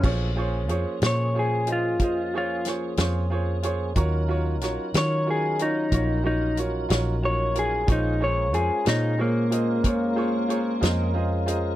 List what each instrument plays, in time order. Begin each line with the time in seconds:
0.01 fingered electric bass A#1, tonewheel organ F#3 B3 D4 A4 C5, upright piano F4 G#4 C5, kick, crash
0.05 upright piano C#5
0.36 tonewheel organ F3 A#3 C#4 G#4, upright piano F4 G#4 C5 C#5
0.69 fingered electric bass F2, upright piano F4 G#4 C5 C#5, closed hi-hat
1.02 fingered electric bass A#2, upright piano F4 G#4 C5 C#5, snare, closed hi-hat
1.07 electric slide guitar C#5
1.34 upright piano F4 G#4 C5 C#5
1.39 electric slide guitar G#4
1.67 upright piano F4 G#4 C5 D#5, closed hi-hat
1.72 electric slide guitar F4
1.99 fingered electric bass F2, upright piano F4 G#4 C5 D#5, kick, closed hi-hat
2.34 upright piano F4 G#4 C5 C#5, electric slide guitar F4
2.65 upright piano F4 G#4 C5 C#5, snare, closed hi-hat
2.97 fingered electric bass F2, upright piano F4 G#4 C5 C#5, snare, closed hi-hat
3.30 upright piano F4 G#4 C5 C#5
3.63 upright piano F4 G#4 C5 C#5, closed hi-hat
3.95 fingered electric bass D#2, tonewheel organ F#3 C#4 D#4 A#4, upright piano F4 F#4 A#4 C#5, kick, closed hi-hat
4.28 upright piano F4 F#4 A#4 C#5
4.61 fingered electric bass A#1, upright piano F4 F#4 A#4 C#5, snare, closed hi-hat
4.94 fingered electric bass D#3, upright piano F4 F#4 A#4 C#5, electric slide guitar C#5, snare, closed hi-hat
5.27 upright piano F4 F#4 A#4 C#5, electric slide guitar G#4
5.59 electric slide guitar D#4, upright piano F4 F#4 A#4 C#5, closed hi-hat
5.92 fingered electric bass A#1, upright piano F4 F#4 A#4 C#5, kick, closed hi-hat
6.23 electric slide guitar D#4, upright piano F4 F#4 A#4 C#5
6.57 upright piano F4 F#4 A#4 C#5, closed hi-hat
6.89 fingered electric bass A#1, upright piano F4 F#4 A#4 C#5, snare, closed hi-hat
7.22 upright piano F4 F#4 A#4 C#5, electric slide guitar C#5
7.54 upright piano F4 F#4 A#4 C#5, closed hi-hat
7.59 electric slide guitar G#4
7.87 fingered electric bass A#1, tonewheel organ G#3 C#4 F4 A#4, upright piano F4 G#4 C5 C#5, kick, closed hi-hat
7.92 electric slide guitar D#4
8.20 upright piano F4 G#4 C5 C#5, electric slide guitar C#5
8.53 fingered electric bass F2, upright piano F4 G#4 C5 C#5, electric slide guitar G#4, closed hi-hat
8.85 fingered electric bass A#2, electric slide guitar D#4, upright piano F4 G#4 C5 C#5, snare, closed hi-hat
9.18 electric slide guitar A#3, upright piano F4 G#4 C5 C#5
9.50 upright piano F4 G#4 C5 D#5, closed hi-hat
9.83 fingered electric bass F2, upright piano F4 G#4 C5 C#5, kick, closed hi-hat
10.16 upright piano F4 G#4 C5 C#5
10.48 upright piano F4 G#4 C5 C#5, closed hi-hat
10.81 fingered electric bass F2, upright piano F4 G#4 C5 D#5, snare, closed hi-hat
11.14 upright piano F4 G#4 C5 D#5
11.46 upright piano F4 G#4 C5 D#5, closed hi-hat